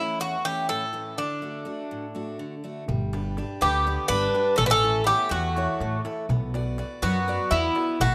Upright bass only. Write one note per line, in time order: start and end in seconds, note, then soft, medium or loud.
2.89 3.40 G1 loud
3.62 3.96 D2 loud
4.09 4.27 G1 medium
4.59 5.10 A1 loud
5.31 5.66 E2 medium
5.80 5.98 A1 medium
6.29 6.80 B1 loud
7.03 7.37 F#2 medium
7.51 7.68 E2 medium
8.00 8.15 A1 loud